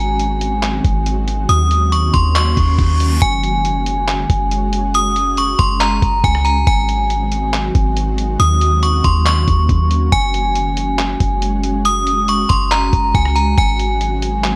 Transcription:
Already playing: G#1 D#3 F#3 G#3 C4 F#4 G#5
0.20 closed hi-hat
0.41 closed hi-hat
0.63 clap, closed hi-hat
0.84 G#1, kick, closed hi-hat
1.06 closed hi-hat
1.28 closed hi-hat
1.49 D#2 D#3 A#3 C#4 D#6, closed hi-hat
1.71 closed hi-hat
1.92 C#6, closed hi-hat
2.14 D#2 C6, kick, closed hi-hat
2.35 C#6, clap, closed hi-hat, reverse cymbal
2.57 D#2, kick, closed hi-hat
2.79 D#2, kick, closed hi-hat
3.00 closed hi-hat
3.22 F#1 G#3 C#4 F#4 G#5, kick, closed hi-hat
3.43 closed hi-hat
3.65 closed hi-hat
3.86 closed hi-hat
4.08 clap, closed hi-hat
4.30 F#1, kick, closed hi-hat
4.51 closed hi-hat
4.73 closed hi-hat
4.94 D#6, closed hi-hat
5.16 closed hi-hat
5.37 C#6, closed hi-hat
5.59 F#1 C6, kick, closed hi-hat
5.81 A#5, clap, closed hi-hat
6.02 F#1, kick, closed hi-hat
6.24 C#2 G#5, kick, closed hi-hat
6.35 cross-stick
6.45 A#5, closed hi-hat
6.67 G#1 D#3 F#3 C4 F#4 G#5, kick, closed hi-hat
6.89 closed hi-hat
7.10 closed hi-hat
7.32 closed hi-hat
7.54 clap, closed hi-hat
7.75 G#1, kick, closed hi-hat
7.97 closed hi-hat
8.18 closed hi-hat
8.39 D#2 F#3 A#3 C#4 D#6, closed hi-hat
8.61 closed hi-hat
8.83 C#6, closed hi-hat
9.04 D#2 C6, kick, closed hi-hat
9.26 C#6, clap, closed hi-hat
9.48 D#2, kick, closed hi-hat
9.69 D#2, kick, closed hi-hat
9.91 closed hi-hat
10.12 F#1 G#3 F#4 G#5, kick, closed hi-hat
10.34 closed hi-hat
10.55 closed hi-hat
10.77 closed hi-hat
10.99 clap, closed hi-hat
11.20 F#1, kick, closed hi-hat
11.42 closed hi-hat
11.63 closed hi-hat
11.85 D#6, closed hi-hat
12.07 closed hi-hat
12.28 C#6, closed hi-hat
12.49 F#1 C6, kick, closed hi-hat
12.71 A#5, clap, closed hi-hat
12.93 F#1, kick, closed hi-hat
13.15 C#2 G#5, kick, closed hi-hat
13.25 cross-stick
13.36 A#5, closed hi-hat
13.58 G#1 D#3 F#3 G#3 C4 G#5, kick, closed hi-hat
13.79 closed hi-hat
14.01 closed hi-hat
14.22 closed hi-hat
14.44 clap, closed hi-hat

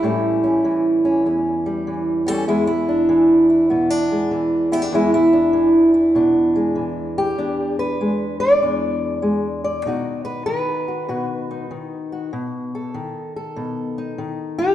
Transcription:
Already playing: E4
0.03 A2 E3 G3 C#4
0.44 C#4
0.64 E3
1.05 C#4
1.26 E2 C#4
1.66 G3
1.87 E3
2.27 G3 C#4 A4
2.48 E2 G#3 E4
2.67 E4
2.89 D4
3.09 E3
3.50 E4
3.70 B2 B3
3.90 D4
4.11 G#3
4.31 E3
4.72 B3 E4 G4
4.82 D4
4.92 E2 G#3 E4
5.14 E4
5.33 D4
5.53 E3
5.94 E4
6.15 B2 D4
6.56 G#3
6.75 E3
7.18 G4
7.38 E2 D4
7.79 B4
8.01 G#3
8.40 D5
8.62 E2 D4
9.22 G#3
9.64 D5
9.86 B2 D#3 D#4 F#4
10.25 B4
10.46 D#3 B4
10.88 F#4
11.08 B2 F#4
11.51 D#4
11.71 D#3
12.12 F#4
12.33 B2
12.75 A4
12.94 D#3
13.36 A4
13.56 B2
13.98 D#4
14.18 D#3
14.59 G4

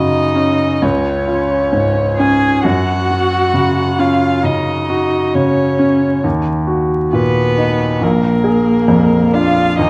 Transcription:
Already playing: F#2 C#3 D#4 F#4 D#5
0.35 C#4
0.82 C#2 C#4 C#5
1.27 F4
1.73 G#2
2.17 C#4 G#4 G#5
2.63 F#2 F#4 F#5
3.11 F#4
3.54 C#3
3.98 C#4 F4 F5
4.43 C#3 D#4 D#5
4.90 F#4
5.34 C#3 C#4 C#5
5.79 C#4
6.24 D#2
6.67 F#4
7.13 A#2 B3 B4
7.57 D#4
8.01 A#1 A#3 A#4
8.44 G#4
8.88 F2
9.33 D4 F4 F5
9.78 D#2 D#4 D#5

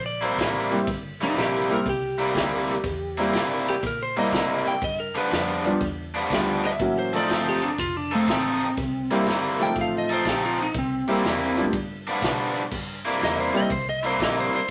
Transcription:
Already playing: A#1
0.06 D5
0.21 C3 G3 A#3 E4 C5, ride
0.38 A1 C3 G3 A#3 E4, kick, snare, ride
0.70 G3 A#3 C4 E4 G4, snare, ride
0.87 G1, kick, snare, ride
1.21 C3 G3 A#3 D#4 E4, ride
1.36 A#1 C3 G3 A#3 E4 G4, snare, ride
1.69 G3 A#3 C4 E4 G4, ride
1.73 A#4
1.86 C2 G4, kick, ride
2.18 C3 G3 A#3 E4, ride
2.35 D2 C3 G3 A#3 E4, kick, snare, ride
2.68 snare, ride
2.84 E2, kick, snare, ride
3.17 C3 G3 A#3 C4 E4 G4, snare, ride
3.33 G2 C3 G3 A#3 E4, snare, ride
3.67 G4, ride
3.83 A#2 A#4, kick, snare, ride
4.03 C5
4.16 C3 G3 A#3 C4 E4 G4 D#5, ride
4.32 G#2 C3 G3 A#3 E4, kick, snare, ride
4.65 G5, ride
4.82 G2 D#5, kick, ride
5.00 A#4
5.15 G2 F3 B3 D4 B4, muted fingered electric bass stroke, ride
5.31 F2 G2 F3 B3 D4, snare, ride
5.64 G3 B3 D4 F4 G4, ride
5.81 E2, kick, snare, ride
6.14 G2 F3 B3 D4, ride
6.30 D2 G2 F3 G3 B3 D4 F4 G4, kick, snare, ride
6.64 E5, ride
6.80 A1 F#3 A#3 C#4 E4 F#4, kick, ride
6.99 C5
7.13 F3 A3 C4 D#4 F4 A4 D5, snare, ride
7.29 G1 F3 C4 D#4 A4 C5, snare, ride
7.49 G4
7.62 D4, ride
7.78 F1 F4, kick, ride
7.97 D4
8.11 F3 A3 C4 D#4 A4, ride
8.27 A1 F3 C4 D#4 A4, kick, snare, ride
8.61 snare, ride
8.77 C2, kick, snare, ride
9.11 C3 G3 A#3 C4 E4 G4, snare, ride
9.27 G1 C3 G3 A#3 E4, snare, ride
9.59 F3 A3 C4 D#4 F4 G5, ride
9.76 A1, kick, snare, ride
9.81 F5
9.98 D#5
10.09 F3 C4 D#4 A4, ride
10.14 C5
10.25 A#1 F3 C4 D#4 A4, kick, snare, ride
10.29 G4
10.46 F4
10.58 D#4, ride
10.74 C2, kick, ride
10.78 C4
11.08 C3 G3 A#3 C4 E4 G4, muted fingered electric bass stroke, snare, ride
11.24 E2 C3 G3 A#3 E4, snare, ride
11.57 G3 B3 D4 F4 G4, ride
11.73 G2, kick, ride
12.06 G2 F3 B3 D4, ride
12.22 G2 B2 F3 B3 D4, kick, snare, ride
12.56 snare, ride
12.71 G2, kick, crash
13.05 C3 G3 A#3 E4, ride
13.21 E2 C3 G3 A#3 E4 D#5, snare, ride
13.40 C5
13.53 G3 A#3 C4 E4 G4 D#5, muted fingered electric bass stroke, ride
13.70 C2 C5, kick, ride
13.89 D#5
14.03 C3 G3 A#3 E4 C5, ride
14.19 A#1 C3 G3 A#3 E4 D#5, kick, snare, ride
14.40 C5
14.53 C5, muted fingered electric bass stroke, snare, ride

